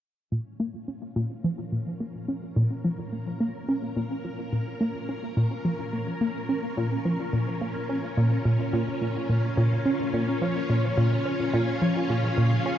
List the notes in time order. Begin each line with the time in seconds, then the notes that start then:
0.32 A#2 C#4
0.60 A#3
0.74 F4
0.88 C#4
1.16 A#2
1.33 A#4
1.44 F3
1.72 A#2
2.00 A#3
2.28 C#4
2.56 A#2
2.84 F3
3.13 A#2
3.40 A#3
3.69 C#4
3.96 A#2
4.25 F3
4.53 A#2
4.81 A#3
5.09 C#4
5.37 A#2
5.65 F3
5.93 A#2
6.21 A#3
6.49 C#4
6.77 A#2
7.05 F3
7.33 A#2
7.61 A#3
7.89 C#4
8.17 A#2
8.45 A#2
8.73 A#2
9.01 A#2
9.29 A#2
9.57 A#2
9.85 C#4
10.13 A#2
10.42 F3
10.70 A#2
10.98 A#2
11.25 C#4
11.54 A#2
11.82 F3
11.92 G#4
12.10 A#2
12.38 A#2
12.66 C#4